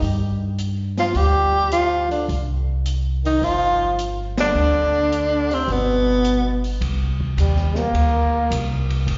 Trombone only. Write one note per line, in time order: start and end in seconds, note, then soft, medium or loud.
0.99 1.17 F3 medium
1.15 1.71 G3 medium
1.72 2.09 F3 medium
2.10 2.27 D3 medium
3.25 3.44 D#3 medium
3.42 3.99 F3 medium
4.39 5.53 D3 medium
5.51 5.69 C3 medium
5.68 6.64 B2 medium
7.40 7.79 G3 medium
7.78 8.52 A#3 medium